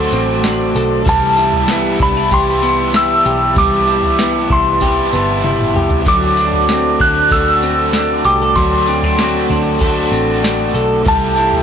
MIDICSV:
0, 0, Header, 1, 7, 480
1, 0, Start_track
1, 0, Tempo, 625000
1, 818, Time_signature, 4, 2, 24, 8
1, 8930, End_track
2, 0, Start_track
2, 0, Title_t, "Synth bell"
2, 0, Program_c, 0, 98
2, 0, Note_on_c, 0, 84, 82
2, 310, Note_off_c, 0, 84, 0
2, 837, Note_on_c, 0, 81, 121
2, 1277, Note_off_c, 0, 81, 0
2, 1556, Note_on_c, 0, 83, 88
2, 1794, Note_off_c, 0, 83, 0
2, 1795, Note_on_c, 0, 84, 99
2, 2276, Note_on_c, 0, 88, 94
2, 2281, Note_off_c, 0, 84, 0
2, 2751, Note_on_c, 0, 86, 99
2, 2761, Note_off_c, 0, 88, 0
2, 3434, Note_off_c, 0, 86, 0
2, 3475, Note_on_c, 0, 84, 82
2, 4155, Note_off_c, 0, 84, 0
2, 4672, Note_on_c, 0, 86, 100
2, 5386, Note_on_c, 0, 90, 100
2, 5406, Note_off_c, 0, 86, 0
2, 5623, Note_on_c, 0, 88, 105
2, 5629, Note_off_c, 0, 90, 0
2, 6338, Note_on_c, 0, 86, 91
2, 6362, Note_off_c, 0, 88, 0
2, 6573, Note_on_c, 0, 84, 84
2, 6585, Note_off_c, 0, 86, 0
2, 7985, Note_off_c, 0, 84, 0
2, 8513, Note_on_c, 0, 81, 120
2, 8930, Note_off_c, 0, 81, 0
2, 8930, End_track
3, 0, Start_track
3, 0, Title_t, "Tonewheel organ"
3, 0, Program_c, 1, 16
3, 0, Note_on_c, 1, 66, 64
3, 0, Note_on_c, 1, 72, 58
3, 0, Note_on_c, 1, 81, 59
3, 0, Note_on_c, 1, 86, 68
3, 786, Note_off_c, 1, 66, 0
3, 786, Note_off_c, 1, 86, 0
3, 787, Note_off_c, 1, 72, 0
3, 809, Note_on_c, 1, 76, 58
3, 814, Note_on_c, 1, 67, 65
3, 4623, Note_off_c, 1, 76, 0
3, 4625, Note_off_c, 1, 67, 0
3, 4627, Note_off_c, 1, 81, 0
3, 4657, Note_on_c, 1, 81, 69
3, 4658, Note_on_c, 1, 66, 66
3, 4659, Note_on_c, 1, 69, 60
3, 4662, Note_on_c, 1, 74, 54
3, 8467, Note_off_c, 1, 66, 0
3, 8467, Note_off_c, 1, 81, 0
3, 8469, Note_off_c, 1, 74, 0
3, 8494, Note_on_c, 1, 67, 69
3, 8494, Note_on_c, 1, 79, 79
3, 8497, Note_on_c, 1, 76, 60
3, 8930, Note_off_c, 1, 67, 0
3, 8930, Note_off_c, 1, 69, 0
3, 8930, Note_off_c, 1, 76, 0
3, 8930, Note_off_c, 1, 79, 0
3, 8930, End_track
4, 0, Start_track
4, 0, Title_t, "Clean electric guitar"
4, 0, Program_c, 2, 27
4, 0, Note_on_c, 2, 54, 84
4, 0, Note_on_c, 2, 60, 61
4, 0, Note_on_c, 2, 62, 64
4, 0, Note_on_c, 2, 69, 71
4, 98, Note_off_c, 2, 60, 0
4, 101, Note_on_c, 2, 60, 63
4, 333, Note_off_c, 2, 62, 0
4, 343, Note_on_c, 2, 62, 62
4, 572, Note_off_c, 2, 69, 0
4, 581, Note_on_c, 2, 69, 67
4, 818, Note_off_c, 2, 54, 0
4, 823, Note_on_c, 2, 55, 92
4, 867, Note_off_c, 2, 69, 0
4, 868, Note_off_c, 2, 62, 0
4, 1058, Note_on_c, 2, 64, 61
4, 1299, Note_off_c, 2, 60, 0
4, 1302, Note_on_c, 2, 59, 61
4, 1538, Note_off_c, 2, 64, 0
4, 1548, Note_on_c, 2, 62, 62
4, 1667, Note_off_c, 2, 62, 0
4, 1667, Note_on_c, 2, 64, 53
4, 1781, Note_on_c, 2, 67, 74
4, 2008, Note_off_c, 2, 59, 0
4, 2018, Note_on_c, 2, 59, 66
4, 2247, Note_off_c, 2, 64, 0
4, 2257, Note_on_c, 2, 64, 60
4, 2492, Note_off_c, 2, 67, 0
4, 2501, Note_on_c, 2, 67, 64
4, 2730, Note_off_c, 2, 55, 0
4, 2739, Note_on_c, 2, 55, 83
4, 2969, Note_off_c, 2, 64, 0
4, 2978, Note_on_c, 2, 64, 56
4, 3209, Note_off_c, 2, 59, 0
4, 3218, Note_on_c, 2, 59, 58
4, 3448, Note_off_c, 2, 64, 0
4, 3457, Note_on_c, 2, 64, 59
4, 3691, Note_off_c, 2, 67, 0
4, 3701, Note_on_c, 2, 67, 68
4, 3930, Note_off_c, 2, 59, 0
4, 3939, Note_on_c, 2, 59, 62
4, 4170, Note_off_c, 2, 64, 0
4, 4179, Note_on_c, 2, 64, 58
4, 4414, Note_off_c, 2, 67, 0
4, 4423, Note_on_c, 2, 67, 63
4, 4655, Note_off_c, 2, 55, 0
4, 4658, Note_on_c, 2, 54, 78
4, 4706, Note_off_c, 2, 59, 0
4, 4706, Note_off_c, 2, 64, 0
4, 4708, Note_off_c, 2, 67, 0
4, 4900, Note_on_c, 2, 62, 61
4, 5141, Note_on_c, 2, 60, 65
4, 5367, Note_off_c, 2, 62, 0
4, 5376, Note_on_c, 2, 62, 67
4, 5618, Note_on_c, 2, 69, 68
4, 5860, Note_off_c, 2, 60, 0
4, 5863, Note_on_c, 2, 60, 62
4, 6090, Note_off_c, 2, 62, 0
4, 6099, Note_on_c, 2, 62, 59
4, 6337, Note_off_c, 2, 69, 0
4, 6340, Note_on_c, 2, 67, 64
4, 6463, Note_off_c, 2, 67, 0
4, 6463, Note_on_c, 2, 69, 58
4, 6571, Note_off_c, 2, 54, 0
4, 6580, Note_on_c, 2, 54, 80
4, 6818, Note_off_c, 2, 62, 0
4, 6821, Note_off_c, 2, 60, 0
4, 6821, Note_on_c, 2, 60, 62
4, 6942, Note_off_c, 2, 60, 0
4, 6942, Note_on_c, 2, 62, 55
4, 7063, Note_on_c, 2, 60, 59
4, 7287, Note_off_c, 2, 62, 0
4, 7296, Note_on_c, 2, 62, 66
4, 7526, Note_off_c, 2, 69, 0
4, 7535, Note_on_c, 2, 69, 72
4, 7765, Note_off_c, 2, 60, 0
4, 7768, Note_on_c, 2, 60, 61
4, 8001, Note_off_c, 2, 62, 0
4, 8011, Note_on_c, 2, 62, 63
4, 8242, Note_off_c, 2, 69, 0
4, 8251, Note_on_c, 2, 69, 66
4, 8487, Note_off_c, 2, 54, 0
4, 8490, Note_on_c, 2, 55, 85
4, 8542, Note_off_c, 2, 62, 0
4, 8542, Note_off_c, 2, 69, 0
4, 8733, Note_on_c, 2, 64, 59
4, 8930, Note_off_c, 2, 55, 0
4, 8930, Note_off_c, 2, 60, 0
4, 8930, Note_off_c, 2, 64, 0
4, 8930, End_track
5, 0, Start_track
5, 0, Title_t, "Overdriven electric guitar"
5, 0, Program_c, 3, 29
5, 0, Note_on_c, 3, 50, 74
5, 0, Note_on_c, 3, 57, 74
5, 0, Note_on_c, 3, 60, 81
5, 0, Note_on_c, 3, 66, 85
5, 806, Note_on_c, 3, 48, 84
5, 808, Note_off_c, 3, 50, 0
5, 813, Note_on_c, 3, 52, 87
5, 818, Note_off_c, 3, 57, 0
5, 821, Note_on_c, 3, 55, 83
5, 824, Note_off_c, 3, 60, 0
5, 826, Note_off_c, 3, 66, 0
5, 827, Note_on_c, 3, 59, 87
5, 830, Note_on_c, 3, 64, 93
5, 1281, Note_off_c, 3, 52, 0
5, 1290, Note_on_c, 3, 52, 55
5, 1292, Note_off_c, 3, 48, 0
5, 1296, Note_off_c, 3, 55, 0
5, 1302, Note_off_c, 3, 59, 0
5, 1304, Note_off_c, 3, 64, 0
5, 1305, Note_on_c, 3, 55, 63
5, 1316, Note_on_c, 3, 59, 61
5, 1324, Note_on_c, 3, 64, 61
5, 1520, Note_off_c, 3, 64, 0
5, 1529, Note_on_c, 3, 64, 52
5, 1534, Note_off_c, 3, 52, 0
5, 1538, Note_off_c, 3, 59, 0
5, 1541, Note_off_c, 3, 55, 0
5, 1548, Note_on_c, 3, 59, 51
5, 1566, Note_on_c, 3, 55, 40
5, 1774, Note_off_c, 3, 64, 0
5, 1781, Note_on_c, 3, 52, 72
5, 1783, Note_off_c, 3, 59, 0
5, 1785, Note_off_c, 3, 55, 0
5, 1794, Note_on_c, 3, 55, 83
5, 1808, Note_on_c, 3, 59, 81
5, 1817, Note_on_c, 3, 64, 89
5, 2726, Note_on_c, 3, 48, 81
5, 2736, Note_off_c, 3, 52, 0
5, 2745, Note_on_c, 3, 52, 81
5, 2746, Note_off_c, 3, 55, 0
5, 2753, Note_off_c, 3, 59, 0
5, 2755, Note_on_c, 3, 55, 89
5, 2758, Note_off_c, 3, 64, 0
5, 2771, Note_on_c, 3, 59, 82
5, 2782, Note_on_c, 3, 64, 78
5, 3675, Note_off_c, 3, 48, 0
5, 3685, Note_on_c, 3, 48, 70
5, 3691, Note_off_c, 3, 52, 0
5, 3700, Note_on_c, 3, 52, 78
5, 3707, Note_off_c, 3, 55, 0
5, 3714, Note_off_c, 3, 59, 0
5, 3715, Note_on_c, 3, 55, 81
5, 3720, Note_off_c, 3, 64, 0
5, 3729, Note_on_c, 3, 59, 80
5, 3740, Note_on_c, 3, 64, 76
5, 4645, Note_off_c, 3, 52, 0
5, 4649, Note_on_c, 3, 50, 85
5, 4651, Note_off_c, 3, 48, 0
5, 4655, Note_off_c, 3, 55, 0
5, 4658, Note_on_c, 3, 57, 78
5, 4663, Note_off_c, 3, 59, 0
5, 4667, Note_on_c, 3, 60, 84
5, 4668, Note_off_c, 3, 64, 0
5, 4672, Note_on_c, 3, 66, 82
5, 5361, Note_off_c, 3, 66, 0
5, 5370, Note_on_c, 3, 66, 49
5, 5373, Note_off_c, 3, 50, 0
5, 5378, Note_off_c, 3, 57, 0
5, 5387, Note_off_c, 3, 60, 0
5, 5390, Note_on_c, 3, 60, 45
5, 5404, Note_on_c, 3, 57, 42
5, 5604, Note_on_c, 3, 50, 77
5, 5614, Note_off_c, 3, 66, 0
5, 5615, Note_off_c, 3, 57, 0
5, 5624, Note_off_c, 3, 60, 0
5, 5624, Note_on_c, 3, 57, 84
5, 5644, Note_on_c, 3, 60, 77
5, 5661, Note_on_c, 3, 66, 88
5, 6561, Note_off_c, 3, 50, 0
5, 6570, Note_off_c, 3, 57, 0
5, 6571, Note_on_c, 3, 50, 84
5, 6579, Note_on_c, 3, 57, 86
5, 6584, Note_off_c, 3, 60, 0
5, 6584, Note_off_c, 3, 66, 0
5, 6587, Note_on_c, 3, 60, 83
5, 6593, Note_on_c, 3, 66, 90
5, 7032, Note_off_c, 3, 50, 0
5, 7042, Note_on_c, 3, 50, 54
5, 7044, Note_off_c, 3, 57, 0
5, 7053, Note_on_c, 3, 57, 55
5, 7063, Note_off_c, 3, 60, 0
5, 7065, Note_off_c, 3, 66, 0
5, 7066, Note_on_c, 3, 60, 59
5, 7079, Note_on_c, 3, 66, 62
5, 7507, Note_off_c, 3, 50, 0
5, 7516, Note_on_c, 3, 50, 83
5, 7528, Note_off_c, 3, 57, 0
5, 7538, Note_on_c, 3, 57, 89
5, 7548, Note_off_c, 3, 66, 0
5, 7553, Note_off_c, 3, 60, 0
5, 7556, Note_on_c, 3, 60, 90
5, 7572, Note_on_c, 3, 66, 93
5, 8486, Note_on_c, 3, 48, 75
5, 8487, Note_off_c, 3, 50, 0
5, 8494, Note_on_c, 3, 52, 82
5, 8496, Note_off_c, 3, 57, 0
5, 8499, Note_on_c, 3, 55, 90
5, 8505, Note_off_c, 3, 60, 0
5, 8508, Note_on_c, 3, 59, 88
5, 8509, Note_off_c, 3, 66, 0
5, 8512, Note_on_c, 3, 67, 83
5, 8930, Note_off_c, 3, 48, 0
5, 8930, Note_off_c, 3, 52, 0
5, 8930, Note_off_c, 3, 55, 0
5, 8930, Note_off_c, 3, 59, 0
5, 8930, Note_off_c, 3, 67, 0
5, 8930, End_track
6, 0, Start_track
6, 0, Title_t, "Picked electric bass"
6, 0, Program_c, 4, 34
6, 98, Note_on_c, 4, 33, 93
6, 554, Note_off_c, 4, 33, 0
6, 578, Note_on_c, 4, 35, 88
6, 806, Note_off_c, 4, 35, 0
6, 818, Note_on_c, 4, 36, 109
6, 1507, Note_off_c, 4, 36, 0
6, 1537, Note_on_c, 4, 36, 98
6, 1766, Note_off_c, 4, 36, 0
6, 1780, Note_on_c, 4, 36, 98
6, 2468, Note_off_c, 4, 36, 0
6, 2503, Note_on_c, 4, 35, 94
6, 2728, Note_off_c, 4, 35, 0
6, 2739, Note_on_c, 4, 36, 111
6, 3428, Note_off_c, 4, 36, 0
6, 3459, Note_on_c, 4, 36, 101
6, 3942, Note_on_c, 4, 31, 90
6, 3954, Note_off_c, 4, 36, 0
6, 4396, Note_off_c, 4, 31, 0
6, 4423, Note_on_c, 4, 36, 85
6, 4649, Note_off_c, 4, 36, 0
6, 4657, Note_on_c, 4, 38, 100
6, 5347, Note_off_c, 4, 38, 0
6, 5379, Note_on_c, 4, 38, 91
6, 5607, Note_off_c, 4, 38, 0
6, 5618, Note_on_c, 4, 38, 97
6, 6307, Note_off_c, 4, 38, 0
6, 6338, Note_on_c, 4, 36, 92
6, 6566, Note_off_c, 4, 36, 0
6, 6573, Note_on_c, 4, 38, 108
6, 7265, Note_off_c, 4, 38, 0
6, 7294, Note_on_c, 4, 38, 97
6, 7752, Note_off_c, 4, 38, 0
6, 7771, Note_on_c, 4, 33, 89
6, 8230, Note_off_c, 4, 33, 0
6, 8251, Note_on_c, 4, 35, 86
6, 8482, Note_off_c, 4, 35, 0
6, 8497, Note_on_c, 4, 36, 120
6, 8930, Note_off_c, 4, 36, 0
6, 8930, End_track
7, 0, Start_track
7, 0, Title_t, "Drums"
7, 96, Note_on_c, 9, 54, 61
7, 173, Note_off_c, 9, 54, 0
7, 336, Note_on_c, 9, 54, 91
7, 337, Note_on_c, 9, 38, 101
7, 412, Note_off_c, 9, 54, 0
7, 414, Note_off_c, 9, 38, 0
7, 580, Note_on_c, 9, 54, 64
7, 657, Note_off_c, 9, 54, 0
7, 816, Note_on_c, 9, 36, 111
7, 818, Note_on_c, 9, 43, 113
7, 818, Note_on_c, 9, 54, 61
7, 893, Note_off_c, 9, 36, 0
7, 895, Note_off_c, 9, 43, 0
7, 895, Note_off_c, 9, 54, 0
7, 1051, Note_on_c, 9, 54, 64
7, 1127, Note_off_c, 9, 54, 0
7, 1176, Note_on_c, 9, 43, 67
7, 1253, Note_off_c, 9, 43, 0
7, 1290, Note_on_c, 9, 38, 122
7, 1291, Note_on_c, 9, 54, 97
7, 1367, Note_off_c, 9, 38, 0
7, 1368, Note_off_c, 9, 54, 0
7, 1536, Note_on_c, 9, 43, 65
7, 1537, Note_on_c, 9, 36, 90
7, 1612, Note_off_c, 9, 43, 0
7, 1614, Note_off_c, 9, 36, 0
7, 1775, Note_on_c, 9, 43, 61
7, 1775, Note_on_c, 9, 54, 64
7, 1777, Note_on_c, 9, 36, 85
7, 1852, Note_off_c, 9, 43, 0
7, 1852, Note_off_c, 9, 54, 0
7, 1854, Note_off_c, 9, 36, 0
7, 2019, Note_on_c, 9, 54, 56
7, 2096, Note_off_c, 9, 54, 0
7, 2258, Note_on_c, 9, 54, 86
7, 2260, Note_on_c, 9, 38, 113
7, 2335, Note_off_c, 9, 54, 0
7, 2337, Note_off_c, 9, 38, 0
7, 2501, Note_on_c, 9, 54, 67
7, 2578, Note_off_c, 9, 54, 0
7, 2738, Note_on_c, 9, 36, 115
7, 2738, Note_on_c, 9, 43, 110
7, 2738, Note_on_c, 9, 54, 66
7, 2814, Note_off_c, 9, 36, 0
7, 2815, Note_off_c, 9, 43, 0
7, 2815, Note_off_c, 9, 54, 0
7, 2977, Note_on_c, 9, 54, 65
7, 3053, Note_off_c, 9, 54, 0
7, 3097, Note_on_c, 9, 43, 60
7, 3173, Note_off_c, 9, 43, 0
7, 3217, Note_on_c, 9, 38, 108
7, 3218, Note_on_c, 9, 54, 97
7, 3294, Note_off_c, 9, 38, 0
7, 3294, Note_off_c, 9, 54, 0
7, 3456, Note_on_c, 9, 43, 59
7, 3457, Note_on_c, 9, 36, 92
7, 3533, Note_off_c, 9, 43, 0
7, 3534, Note_off_c, 9, 36, 0
7, 3693, Note_on_c, 9, 43, 61
7, 3693, Note_on_c, 9, 54, 66
7, 3697, Note_on_c, 9, 36, 82
7, 3770, Note_off_c, 9, 43, 0
7, 3770, Note_off_c, 9, 54, 0
7, 3774, Note_off_c, 9, 36, 0
7, 3937, Note_on_c, 9, 54, 59
7, 4014, Note_off_c, 9, 54, 0
7, 4178, Note_on_c, 9, 48, 59
7, 4255, Note_off_c, 9, 48, 0
7, 4297, Note_on_c, 9, 47, 60
7, 4373, Note_off_c, 9, 47, 0
7, 4411, Note_on_c, 9, 45, 85
7, 4488, Note_off_c, 9, 45, 0
7, 4533, Note_on_c, 9, 43, 92
7, 4610, Note_off_c, 9, 43, 0
7, 4655, Note_on_c, 9, 43, 104
7, 4655, Note_on_c, 9, 54, 64
7, 4657, Note_on_c, 9, 36, 118
7, 4732, Note_off_c, 9, 43, 0
7, 4732, Note_off_c, 9, 54, 0
7, 4733, Note_off_c, 9, 36, 0
7, 4893, Note_on_c, 9, 54, 68
7, 4970, Note_off_c, 9, 54, 0
7, 5018, Note_on_c, 9, 43, 62
7, 5095, Note_off_c, 9, 43, 0
7, 5137, Note_on_c, 9, 38, 124
7, 5138, Note_on_c, 9, 54, 102
7, 5214, Note_off_c, 9, 38, 0
7, 5214, Note_off_c, 9, 54, 0
7, 5376, Note_on_c, 9, 43, 61
7, 5377, Note_on_c, 9, 36, 89
7, 5453, Note_off_c, 9, 43, 0
7, 5454, Note_off_c, 9, 36, 0
7, 5616, Note_on_c, 9, 43, 68
7, 5616, Note_on_c, 9, 54, 61
7, 5617, Note_on_c, 9, 36, 91
7, 5693, Note_off_c, 9, 43, 0
7, 5693, Note_off_c, 9, 54, 0
7, 5694, Note_off_c, 9, 36, 0
7, 5856, Note_on_c, 9, 54, 57
7, 5933, Note_off_c, 9, 54, 0
7, 6091, Note_on_c, 9, 54, 93
7, 6093, Note_on_c, 9, 38, 109
7, 6168, Note_off_c, 9, 54, 0
7, 6169, Note_off_c, 9, 38, 0
7, 6332, Note_on_c, 9, 54, 68
7, 6409, Note_off_c, 9, 54, 0
7, 6572, Note_on_c, 9, 43, 106
7, 6572, Note_on_c, 9, 54, 66
7, 6574, Note_on_c, 9, 36, 114
7, 6648, Note_off_c, 9, 43, 0
7, 6648, Note_off_c, 9, 54, 0
7, 6650, Note_off_c, 9, 36, 0
7, 6814, Note_on_c, 9, 54, 69
7, 6891, Note_off_c, 9, 54, 0
7, 6937, Note_on_c, 9, 43, 63
7, 7014, Note_off_c, 9, 43, 0
7, 7056, Note_on_c, 9, 38, 116
7, 7056, Note_on_c, 9, 54, 94
7, 7133, Note_off_c, 9, 38, 0
7, 7133, Note_off_c, 9, 54, 0
7, 7298, Note_on_c, 9, 43, 61
7, 7375, Note_off_c, 9, 43, 0
7, 7535, Note_on_c, 9, 36, 86
7, 7537, Note_on_c, 9, 43, 64
7, 7537, Note_on_c, 9, 54, 64
7, 7612, Note_off_c, 9, 36, 0
7, 7614, Note_off_c, 9, 43, 0
7, 7614, Note_off_c, 9, 54, 0
7, 7779, Note_on_c, 9, 54, 59
7, 7856, Note_off_c, 9, 54, 0
7, 8020, Note_on_c, 9, 54, 92
7, 8022, Note_on_c, 9, 38, 106
7, 8097, Note_off_c, 9, 54, 0
7, 8098, Note_off_c, 9, 38, 0
7, 8257, Note_on_c, 9, 54, 65
7, 8333, Note_off_c, 9, 54, 0
7, 8495, Note_on_c, 9, 36, 112
7, 8496, Note_on_c, 9, 43, 108
7, 8496, Note_on_c, 9, 54, 67
7, 8572, Note_off_c, 9, 36, 0
7, 8573, Note_off_c, 9, 43, 0
7, 8573, Note_off_c, 9, 54, 0
7, 8735, Note_on_c, 9, 54, 65
7, 8812, Note_off_c, 9, 54, 0
7, 8856, Note_on_c, 9, 43, 64
7, 8930, Note_off_c, 9, 43, 0
7, 8930, End_track
0, 0, End_of_file